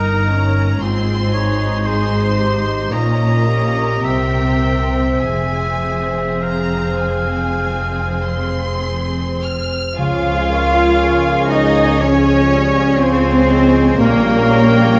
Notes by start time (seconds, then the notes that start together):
Already playing: G1 G2 G3 A#3 D#4 A#4 A#5
0.14 D#4
0.31 C#4
0.48 A#3
0.80 G#1 G#2 C4 F4 G#4 C6
1.16 C4
1.33 D#4 C#5
1.51 D#4
1.84 G#4 C5 C6
2.21 C5
2.37 G4 C5
2.57 D#4
2.92 A#1 A#2 C#4 F4 A#4 D#5 A#5
3.29 A#3
3.47 C#4 G4
3.66 C#4 F4
4.05 C2 C3 C4 E5 G5
4.43 C4
4.82 C4 C5
5.20 F1 F2 F3 C4 G#4 E5 G#5
5.61 C4
6.02 C5
6.42 G#4 F5 A#5
6.84 C5
7.04 G#5
7.24 C4
7.65 G#3
8.04 C4
8.24 C6
8.43 C5
8.82 G#4
9.22 C5
9.42 F6
9.61 C4
9.97 C#2 C#3 F3 G#3 C#4 F4 G#4 C#5 F5 G#5
10.24 G#3
10.50 A#3 C#5
10.76 F5
11.01 C#6
11.26 F5
11.50 D#4 G#4 D#5
11.75 F4
12.00 G#3 C#4 C#5
12.25 G#3
12.51 G3 C#5
12.76 F5
13.00 F3 C4 C5 C#6
13.25 F5
13.50 G#3 G#4
13.75 F4
13.99 A#1 A#2 G3 A#3 C#4 A#4 C#5 G5
14.26 G3
14.54 C#5
14.81 G5